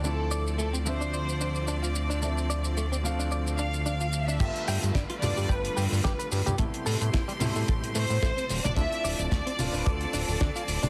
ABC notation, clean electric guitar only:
X:1
M:4/4
L:1/16
Q:"Swing 16ths" 1/4=110
K:Ddor
V:1 name="Clean electric guitar"
D z d z A, C z D d z D z D F z D | D z d z A, C z D d z D z D F z D | G z g z D F z G g z G z G B z G | A, z A z E, G, z A, A z A, z A, C z D |
D z d z A, C z D d z D z D F z D |]